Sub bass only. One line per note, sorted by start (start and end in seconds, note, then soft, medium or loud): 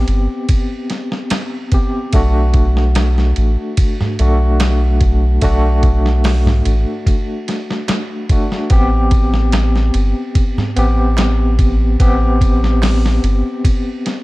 0.08 0.28 G1 medium
2.13 3.33 B1 medium
3.37 3.57 A1 medium
4.20 5.39 B1 medium
5.42 6.62 B1 medium
6.66 6.85 A1 medium
8.71 9.91 A1 medium
9.94 10.14 G1 medium
10.77 11.97 A1 medium
12.00 13.20 A1 medium
13.23 13.43 G1 medium